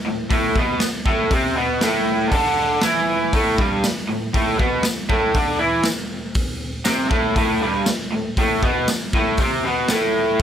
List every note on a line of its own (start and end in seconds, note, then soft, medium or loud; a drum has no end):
0.06 0.27 A2 medium
0.30 0.56 A2 loud
0.30 0.56 A3 loud
0.30 kick loud
0.30 open hi-hat medium
0.56 0.82 B2 medium
0.56 0.83 B3 medium
0.56 kick medium
0.80 muted overdriven electric guitar stroke medium
0.80 snare loud
0.80 open hi-hat medium
0.80 tambourine medium
1.06 1.30 A2 medium
1.06 1.32 A3 loud
1.06 kick loud
1.31 1.55 C3 medium
1.31 1.56 C4 loud
1.31 kick loud
1.31 open hi-hat medium
1.55 1.81 B2 medium
1.55 1.82 B3 loud
1.81 2.32 A2 medium
1.81 2.33 A3 medium
1.81 snare loud
1.81 open hi-hat medium
1.81 tambourine medium
2.32 2.82 D3 loud
2.32 2.83 D4 loud
2.32 kick loud
2.32 open hi-hat medium
2.81 3.33 E3 loud
2.81 3.34 E4 medium
2.81 snare loud
2.81 open hi-hat medium
2.81 tambourine loud
3.33 3.58 A2 medium
3.33 3.59 A3 loud
3.33 kick loud
3.33 open hi-hat medium
3.58 3.83 G2 medium
3.58 3.84 G3 medium
3.58 kick loud
3.84 muted overdriven electric guitar stroke medium
3.84 snare loud
3.84 open hi-hat medium
3.84 tambourine loud
4.09 4.30 A2 medium
4.33 4.58 A2 medium
4.33 4.58 A3 loud
4.33 kick loud
4.33 open hi-hat medium
4.58 4.84 B2 medium
4.58 4.84 B3 medium
4.58 kick loud
4.83 muted overdriven electric guitar stroke medium
4.83 snare loud
4.83 open hi-hat medium
4.83 tambourine loud
5.09 5.34 A2 loud
5.09 5.35 A3 loud
5.09 kick loud
5.34 5.58 D3 loud
5.34 5.59 D4 loud
5.34 kick loud
5.34 open hi-hat medium
5.59 5.84 E3 medium
5.59 5.85 E4 loud
5.83 snare loud
5.83 open hi-hat medium
5.83 tambourine medium
6.35 kick loud
6.35 open hi-hat medium
6.85 7.09 C3 loud
6.85 7.10 C4 loud
6.85 snare loud
6.85 open hi-hat medium
6.85 tambourine loud
7.10 7.34 A2 medium
7.10 7.36 A3 loud
7.10 kick loud
7.35 7.61 A2 medium
7.35 7.61 A3 loud
7.35 kick loud
7.35 open hi-hat medium
7.61 7.86 G2 medium
7.61 7.87 G3 medium
7.86 muted overdriven electric guitar stroke medium
7.86 snare loud
7.86 open hi-hat medium
7.86 tambourine loud
8.13 8.33 A2 medium
8.37 8.62 A2 medium
8.37 8.63 A3 loud
8.37 kick loud
8.37 open hi-hat medium
8.63 8.87 B2 medium
8.63 8.88 B3 medium
8.63 kick loud
8.88 muted overdriven electric guitar stroke medium
8.88 snare loud
8.88 open hi-hat medium
8.88 tambourine medium
9.13 9.39 A2 medium
9.13 9.39 A3 medium
9.13 kick loud
9.37 9.64 C3 medium
9.37 9.64 C4 loud
9.37 kick loud
9.37 open hi-hat medium
9.65 9.89 B2 medium
9.65 9.90 B3 loud
9.88 10.39 A2 medium
9.88 10.40 A3 loud
9.88 snare loud
9.88 open hi-hat medium
9.88 tambourine loud